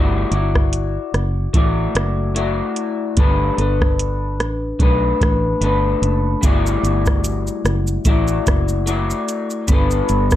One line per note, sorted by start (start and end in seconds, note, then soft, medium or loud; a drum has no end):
0.00 0.24 G1 medium
0.00 0.32 G3 medium
0.00 0.33 A3 medium
0.00 0.33 E4 medium
0.00 0.33 F#4 medium
0.00 0.30 D5 medium
0.31 0.97 G1 medium
0.31 1.54 E4 soft
0.31 1.55 F#4 soft
0.31 1.57 D5 medium
0.31 closed hi-hat soft
0.55 kick medium
0.55 cross-stick medium
0.73 closed hi-hat medium
1.14 1.46 F#1 medium
1.14 cross-stick medium
1.14 closed hi-hat soft
1.53 1.87 A1 medium
1.53 2.34 A3 medium
1.53 2.35 E4 medium
1.53 2.36 F#4 medium
1.53 2.37 D5 medium
1.53 kick medium
1.53 closed hi-hat medium
1.95 2.60 F#1 medium
1.95 cross-stick loud
1.95 closed hi-hat medium
2.35 3.18 A3 medium
2.35 3.17 E4 medium
2.35 3.18 F#4 medium
2.35 3.19 D5 medium
2.35 closed hi-hat medium
2.76 closed hi-hat medium
3.17 3.50 G1 loud
3.17 3.58 G3 medium
3.17 3.58 A3 medium
3.17 3.58 D4 medium
3.17 3.58 A4 medium
3.17 3.56 B4 medium
3.17 kick loud
3.17 closed hi-hat medium
3.57 4.40 G1 medium
3.57 4.80 D4 soft
3.57 4.81 A4 soft
3.57 4.79 B4 soft
3.57 closed hi-hat soft
3.81 kick medium
3.81 cross-stick medium
3.99 closed hi-hat medium
4.40 4.72 A1 medium
4.40 cross-stick medium
4.40 closed hi-hat soft
4.79 5.12 B1 medium
4.79 5.61 A3 medium
4.79 5.62 D4 medium
4.79 5.63 A4 medium
4.79 5.63 B4 medium
4.79 kick medium
4.79 closed hi-hat medium
5.21 5.53 A1 medium
5.21 kick medium
5.21 cross-stick loud
5.21 closed hi-hat medium
5.61 5.94 G1 medium
5.61 6.42 A3 medium
5.61 6.43 D4 medium
5.61 6.44 A4 medium
5.61 6.44 B4 medium
5.61 closed hi-hat medium
6.02 6.34 F#1 medium
6.02 closed hi-hat soft
6.41 6.75 G1 medium
6.41 8.09 G3 medium
6.41 8.05 A3 medium
6.41 8.05 E4 medium
6.41 kick loud
6.41 closed hi-hat medium
6.41 shaker medium
6.45 8.07 F#4 medium
6.45 8.09 D5 medium
6.67 shaker medium
6.83 7.48 G1 medium
6.83 closed hi-hat soft
6.83 shaker soft
7.06 kick medium
7.06 cross-stick medium
7.06 shaker medium
7.24 closed hi-hat medium
7.24 shaker medium
7.47 shaker soft
7.64 7.97 F#1 medium
7.64 cross-stick medium
7.64 closed hi-hat soft
7.64 shaker soft
7.87 shaker soft
8.05 8.38 A1 medium
8.05 8.85 A3 medium
8.05 8.86 E4 medium
8.05 8.86 F#4 medium
8.05 8.88 D5 medium
8.05 kick medium
8.05 closed hi-hat medium
8.05 shaker medium
8.28 shaker soft
8.47 9.12 F#1 medium
8.47 kick medium
8.47 cross-stick medium
8.47 closed hi-hat medium
8.47 shaker medium
8.69 shaker soft
8.86 9.69 A3 medium
8.86 9.68 E4 medium
8.86 9.68 F#4 medium
8.86 9.73 D5 medium
8.86 closed hi-hat medium
8.86 shaker medium
9.10 shaker soft
9.28 closed hi-hat soft
9.28 shaker soft
9.50 shaker soft
9.68 10.01 G1 loud
9.68 10.36 G3 medium
9.68 10.36 B3 medium
9.68 10.36 D4 medium
9.68 kick loud
9.68 closed hi-hat medium
9.68 shaker medium
9.72 10.36 A4 medium
9.72 10.36 B4 medium
9.91 shaker medium
10.09 10.36 G1 medium
10.09 closed hi-hat soft
10.09 shaker soft
10.31 kick medium
10.31 cross-stick medium
10.31 shaker medium